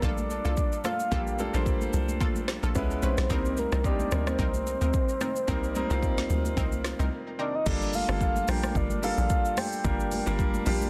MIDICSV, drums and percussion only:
0, 0, Header, 1, 2, 480
1, 0, Start_track
1, 0, Key_signature, -2, "minor"
1, 0, Tempo, 545455
1, 984, Time_signature, 4, 2, 24, 8
1, 9591, End_track
2, 0, Start_track
2, 0, Title_t, "Drums"
2, 21, Note_on_c, 9, 36, 105
2, 24, Note_on_c, 9, 82, 70
2, 26, Note_on_c, 9, 64, 67
2, 109, Note_off_c, 9, 36, 0
2, 112, Note_off_c, 9, 82, 0
2, 114, Note_off_c, 9, 64, 0
2, 154, Note_on_c, 9, 63, 72
2, 154, Note_on_c, 9, 82, 57
2, 242, Note_off_c, 9, 63, 0
2, 242, Note_off_c, 9, 82, 0
2, 267, Note_on_c, 9, 82, 89
2, 355, Note_off_c, 9, 82, 0
2, 395, Note_on_c, 9, 82, 49
2, 483, Note_off_c, 9, 82, 0
2, 503, Note_on_c, 9, 82, 79
2, 505, Note_on_c, 9, 36, 94
2, 591, Note_off_c, 9, 82, 0
2, 593, Note_off_c, 9, 36, 0
2, 637, Note_on_c, 9, 82, 51
2, 725, Note_off_c, 9, 82, 0
2, 739, Note_on_c, 9, 63, 82
2, 743, Note_on_c, 9, 82, 91
2, 747, Note_on_c, 9, 37, 91
2, 827, Note_off_c, 9, 63, 0
2, 831, Note_off_c, 9, 82, 0
2, 835, Note_off_c, 9, 37, 0
2, 877, Note_on_c, 9, 82, 58
2, 965, Note_off_c, 9, 82, 0
2, 984, Note_on_c, 9, 36, 107
2, 984, Note_on_c, 9, 82, 78
2, 986, Note_on_c, 9, 64, 62
2, 1072, Note_off_c, 9, 36, 0
2, 1072, Note_off_c, 9, 82, 0
2, 1074, Note_off_c, 9, 64, 0
2, 1118, Note_on_c, 9, 82, 50
2, 1206, Note_off_c, 9, 82, 0
2, 1221, Note_on_c, 9, 82, 86
2, 1227, Note_on_c, 9, 63, 81
2, 1309, Note_off_c, 9, 82, 0
2, 1315, Note_off_c, 9, 63, 0
2, 1356, Note_on_c, 9, 82, 51
2, 1444, Note_off_c, 9, 82, 0
2, 1462, Note_on_c, 9, 36, 89
2, 1463, Note_on_c, 9, 82, 61
2, 1550, Note_off_c, 9, 36, 0
2, 1551, Note_off_c, 9, 82, 0
2, 1594, Note_on_c, 9, 63, 66
2, 1596, Note_on_c, 9, 82, 53
2, 1682, Note_off_c, 9, 63, 0
2, 1684, Note_off_c, 9, 82, 0
2, 1701, Note_on_c, 9, 82, 97
2, 1704, Note_on_c, 9, 64, 65
2, 1789, Note_off_c, 9, 82, 0
2, 1792, Note_off_c, 9, 64, 0
2, 1835, Note_on_c, 9, 63, 80
2, 1838, Note_on_c, 9, 82, 64
2, 1923, Note_off_c, 9, 63, 0
2, 1926, Note_off_c, 9, 82, 0
2, 1941, Note_on_c, 9, 36, 111
2, 1944, Note_on_c, 9, 82, 76
2, 1946, Note_on_c, 9, 64, 67
2, 2029, Note_off_c, 9, 36, 0
2, 2032, Note_off_c, 9, 82, 0
2, 2034, Note_off_c, 9, 64, 0
2, 2073, Note_on_c, 9, 63, 71
2, 2074, Note_on_c, 9, 82, 57
2, 2161, Note_off_c, 9, 63, 0
2, 2162, Note_off_c, 9, 82, 0
2, 2183, Note_on_c, 9, 37, 90
2, 2183, Note_on_c, 9, 38, 67
2, 2188, Note_on_c, 9, 82, 89
2, 2271, Note_off_c, 9, 37, 0
2, 2271, Note_off_c, 9, 38, 0
2, 2276, Note_off_c, 9, 82, 0
2, 2315, Note_on_c, 9, 82, 49
2, 2403, Note_off_c, 9, 82, 0
2, 2422, Note_on_c, 9, 82, 78
2, 2424, Note_on_c, 9, 36, 94
2, 2510, Note_off_c, 9, 82, 0
2, 2512, Note_off_c, 9, 36, 0
2, 2557, Note_on_c, 9, 82, 53
2, 2645, Note_off_c, 9, 82, 0
2, 2659, Note_on_c, 9, 63, 80
2, 2662, Note_on_c, 9, 82, 90
2, 2747, Note_off_c, 9, 63, 0
2, 2750, Note_off_c, 9, 82, 0
2, 2796, Note_on_c, 9, 82, 60
2, 2799, Note_on_c, 9, 37, 103
2, 2799, Note_on_c, 9, 38, 70
2, 2884, Note_off_c, 9, 82, 0
2, 2887, Note_off_c, 9, 37, 0
2, 2887, Note_off_c, 9, 38, 0
2, 2904, Note_on_c, 9, 36, 114
2, 2904, Note_on_c, 9, 82, 77
2, 2907, Note_on_c, 9, 64, 59
2, 2992, Note_off_c, 9, 36, 0
2, 2992, Note_off_c, 9, 82, 0
2, 2995, Note_off_c, 9, 64, 0
2, 3038, Note_on_c, 9, 82, 51
2, 3126, Note_off_c, 9, 82, 0
2, 3142, Note_on_c, 9, 82, 85
2, 3149, Note_on_c, 9, 63, 75
2, 3230, Note_off_c, 9, 82, 0
2, 3237, Note_off_c, 9, 63, 0
2, 3273, Note_on_c, 9, 63, 60
2, 3276, Note_on_c, 9, 82, 51
2, 3277, Note_on_c, 9, 37, 89
2, 3361, Note_off_c, 9, 63, 0
2, 3364, Note_off_c, 9, 82, 0
2, 3365, Note_off_c, 9, 37, 0
2, 3382, Note_on_c, 9, 36, 93
2, 3384, Note_on_c, 9, 82, 63
2, 3470, Note_off_c, 9, 36, 0
2, 3472, Note_off_c, 9, 82, 0
2, 3515, Note_on_c, 9, 63, 69
2, 3516, Note_on_c, 9, 82, 53
2, 3603, Note_off_c, 9, 63, 0
2, 3604, Note_off_c, 9, 82, 0
2, 3621, Note_on_c, 9, 82, 96
2, 3626, Note_on_c, 9, 64, 69
2, 3627, Note_on_c, 9, 37, 105
2, 3709, Note_off_c, 9, 82, 0
2, 3714, Note_off_c, 9, 64, 0
2, 3715, Note_off_c, 9, 37, 0
2, 3756, Note_on_c, 9, 63, 84
2, 3758, Note_on_c, 9, 37, 98
2, 3758, Note_on_c, 9, 82, 64
2, 3844, Note_off_c, 9, 63, 0
2, 3846, Note_off_c, 9, 37, 0
2, 3846, Note_off_c, 9, 82, 0
2, 3861, Note_on_c, 9, 36, 113
2, 3864, Note_on_c, 9, 82, 71
2, 3867, Note_on_c, 9, 64, 64
2, 3949, Note_off_c, 9, 36, 0
2, 3952, Note_off_c, 9, 82, 0
2, 3955, Note_off_c, 9, 64, 0
2, 3995, Note_on_c, 9, 82, 55
2, 3996, Note_on_c, 9, 63, 71
2, 4083, Note_off_c, 9, 82, 0
2, 4084, Note_off_c, 9, 63, 0
2, 4108, Note_on_c, 9, 82, 93
2, 4196, Note_off_c, 9, 82, 0
2, 4236, Note_on_c, 9, 82, 48
2, 4324, Note_off_c, 9, 82, 0
2, 4343, Note_on_c, 9, 82, 79
2, 4345, Note_on_c, 9, 36, 98
2, 4431, Note_off_c, 9, 82, 0
2, 4433, Note_off_c, 9, 36, 0
2, 4478, Note_on_c, 9, 82, 53
2, 4566, Note_off_c, 9, 82, 0
2, 4582, Note_on_c, 9, 63, 81
2, 4583, Note_on_c, 9, 82, 88
2, 4587, Note_on_c, 9, 37, 87
2, 4670, Note_off_c, 9, 63, 0
2, 4671, Note_off_c, 9, 82, 0
2, 4675, Note_off_c, 9, 37, 0
2, 4716, Note_on_c, 9, 82, 55
2, 4804, Note_off_c, 9, 82, 0
2, 4824, Note_on_c, 9, 36, 107
2, 4824, Note_on_c, 9, 82, 78
2, 4828, Note_on_c, 9, 64, 64
2, 4912, Note_off_c, 9, 36, 0
2, 4912, Note_off_c, 9, 82, 0
2, 4916, Note_off_c, 9, 64, 0
2, 4959, Note_on_c, 9, 82, 52
2, 5047, Note_off_c, 9, 82, 0
2, 5062, Note_on_c, 9, 82, 86
2, 5069, Note_on_c, 9, 63, 81
2, 5150, Note_off_c, 9, 82, 0
2, 5157, Note_off_c, 9, 63, 0
2, 5193, Note_on_c, 9, 63, 59
2, 5196, Note_on_c, 9, 82, 51
2, 5281, Note_off_c, 9, 63, 0
2, 5284, Note_off_c, 9, 82, 0
2, 5302, Note_on_c, 9, 36, 89
2, 5305, Note_on_c, 9, 82, 63
2, 5390, Note_off_c, 9, 36, 0
2, 5393, Note_off_c, 9, 82, 0
2, 5434, Note_on_c, 9, 63, 69
2, 5438, Note_on_c, 9, 82, 51
2, 5439, Note_on_c, 9, 38, 68
2, 5522, Note_off_c, 9, 63, 0
2, 5526, Note_off_c, 9, 82, 0
2, 5527, Note_off_c, 9, 38, 0
2, 5542, Note_on_c, 9, 82, 95
2, 5545, Note_on_c, 9, 64, 67
2, 5630, Note_off_c, 9, 82, 0
2, 5633, Note_off_c, 9, 64, 0
2, 5675, Note_on_c, 9, 63, 80
2, 5679, Note_on_c, 9, 82, 65
2, 5763, Note_off_c, 9, 63, 0
2, 5767, Note_off_c, 9, 82, 0
2, 5781, Note_on_c, 9, 36, 114
2, 5784, Note_on_c, 9, 82, 75
2, 5787, Note_on_c, 9, 64, 67
2, 5869, Note_off_c, 9, 36, 0
2, 5872, Note_off_c, 9, 82, 0
2, 5875, Note_off_c, 9, 64, 0
2, 5915, Note_on_c, 9, 63, 73
2, 5915, Note_on_c, 9, 82, 56
2, 6003, Note_off_c, 9, 63, 0
2, 6003, Note_off_c, 9, 82, 0
2, 6023, Note_on_c, 9, 37, 94
2, 6023, Note_on_c, 9, 38, 64
2, 6028, Note_on_c, 9, 82, 91
2, 6111, Note_off_c, 9, 37, 0
2, 6111, Note_off_c, 9, 38, 0
2, 6116, Note_off_c, 9, 82, 0
2, 6155, Note_on_c, 9, 63, 51
2, 6156, Note_on_c, 9, 82, 47
2, 6243, Note_off_c, 9, 63, 0
2, 6244, Note_off_c, 9, 82, 0
2, 6744, Note_on_c, 9, 36, 114
2, 6744, Note_on_c, 9, 49, 104
2, 6744, Note_on_c, 9, 82, 78
2, 6749, Note_on_c, 9, 64, 60
2, 6832, Note_off_c, 9, 36, 0
2, 6832, Note_off_c, 9, 49, 0
2, 6832, Note_off_c, 9, 82, 0
2, 6837, Note_off_c, 9, 64, 0
2, 6879, Note_on_c, 9, 82, 54
2, 6967, Note_off_c, 9, 82, 0
2, 6981, Note_on_c, 9, 46, 53
2, 6981, Note_on_c, 9, 82, 89
2, 6990, Note_on_c, 9, 63, 78
2, 7069, Note_off_c, 9, 46, 0
2, 7069, Note_off_c, 9, 82, 0
2, 7078, Note_off_c, 9, 63, 0
2, 7116, Note_on_c, 9, 82, 50
2, 7117, Note_on_c, 9, 37, 91
2, 7204, Note_off_c, 9, 82, 0
2, 7205, Note_off_c, 9, 37, 0
2, 7222, Note_on_c, 9, 36, 97
2, 7224, Note_on_c, 9, 82, 64
2, 7231, Note_on_c, 9, 64, 74
2, 7310, Note_off_c, 9, 36, 0
2, 7312, Note_off_c, 9, 82, 0
2, 7319, Note_off_c, 9, 64, 0
2, 7355, Note_on_c, 9, 63, 72
2, 7357, Note_on_c, 9, 82, 53
2, 7443, Note_off_c, 9, 63, 0
2, 7445, Note_off_c, 9, 82, 0
2, 7462, Note_on_c, 9, 46, 60
2, 7462, Note_on_c, 9, 82, 96
2, 7465, Note_on_c, 9, 64, 69
2, 7468, Note_on_c, 9, 37, 105
2, 7550, Note_off_c, 9, 46, 0
2, 7550, Note_off_c, 9, 82, 0
2, 7553, Note_off_c, 9, 64, 0
2, 7556, Note_off_c, 9, 37, 0
2, 7596, Note_on_c, 9, 63, 82
2, 7599, Note_on_c, 9, 37, 101
2, 7599, Note_on_c, 9, 82, 66
2, 7684, Note_off_c, 9, 63, 0
2, 7687, Note_off_c, 9, 37, 0
2, 7687, Note_off_c, 9, 82, 0
2, 7701, Note_on_c, 9, 36, 113
2, 7705, Note_on_c, 9, 82, 75
2, 7707, Note_on_c, 9, 64, 69
2, 7789, Note_off_c, 9, 36, 0
2, 7793, Note_off_c, 9, 82, 0
2, 7795, Note_off_c, 9, 64, 0
2, 7834, Note_on_c, 9, 63, 76
2, 7835, Note_on_c, 9, 82, 59
2, 7922, Note_off_c, 9, 63, 0
2, 7923, Note_off_c, 9, 82, 0
2, 7948, Note_on_c, 9, 46, 57
2, 7948, Note_on_c, 9, 82, 95
2, 8036, Note_off_c, 9, 46, 0
2, 8036, Note_off_c, 9, 82, 0
2, 8075, Note_on_c, 9, 82, 51
2, 8163, Note_off_c, 9, 82, 0
2, 8181, Note_on_c, 9, 82, 83
2, 8184, Note_on_c, 9, 36, 100
2, 8269, Note_off_c, 9, 82, 0
2, 8272, Note_off_c, 9, 36, 0
2, 8317, Note_on_c, 9, 82, 55
2, 8405, Note_off_c, 9, 82, 0
2, 8421, Note_on_c, 9, 63, 84
2, 8423, Note_on_c, 9, 46, 56
2, 8423, Note_on_c, 9, 82, 94
2, 8427, Note_on_c, 9, 37, 97
2, 8509, Note_off_c, 9, 63, 0
2, 8511, Note_off_c, 9, 46, 0
2, 8511, Note_off_c, 9, 82, 0
2, 8515, Note_off_c, 9, 37, 0
2, 8556, Note_on_c, 9, 82, 57
2, 8644, Note_off_c, 9, 82, 0
2, 8664, Note_on_c, 9, 36, 118
2, 8664, Note_on_c, 9, 82, 81
2, 8668, Note_on_c, 9, 64, 63
2, 8752, Note_off_c, 9, 36, 0
2, 8752, Note_off_c, 9, 82, 0
2, 8756, Note_off_c, 9, 64, 0
2, 8799, Note_on_c, 9, 82, 56
2, 8887, Note_off_c, 9, 82, 0
2, 8902, Note_on_c, 9, 46, 52
2, 8902, Note_on_c, 9, 82, 88
2, 8909, Note_on_c, 9, 63, 82
2, 8990, Note_off_c, 9, 46, 0
2, 8990, Note_off_c, 9, 82, 0
2, 8997, Note_off_c, 9, 63, 0
2, 9034, Note_on_c, 9, 63, 59
2, 9035, Note_on_c, 9, 82, 55
2, 9122, Note_off_c, 9, 63, 0
2, 9123, Note_off_c, 9, 82, 0
2, 9142, Note_on_c, 9, 36, 101
2, 9144, Note_on_c, 9, 82, 63
2, 9152, Note_on_c, 9, 64, 75
2, 9230, Note_off_c, 9, 36, 0
2, 9232, Note_off_c, 9, 82, 0
2, 9240, Note_off_c, 9, 64, 0
2, 9275, Note_on_c, 9, 63, 74
2, 9277, Note_on_c, 9, 82, 57
2, 9363, Note_off_c, 9, 63, 0
2, 9365, Note_off_c, 9, 82, 0
2, 9382, Note_on_c, 9, 46, 57
2, 9382, Note_on_c, 9, 82, 97
2, 9385, Note_on_c, 9, 64, 72
2, 9470, Note_off_c, 9, 46, 0
2, 9470, Note_off_c, 9, 82, 0
2, 9473, Note_off_c, 9, 64, 0
2, 9516, Note_on_c, 9, 63, 86
2, 9519, Note_on_c, 9, 82, 68
2, 9591, Note_off_c, 9, 63, 0
2, 9591, Note_off_c, 9, 82, 0
2, 9591, End_track
0, 0, End_of_file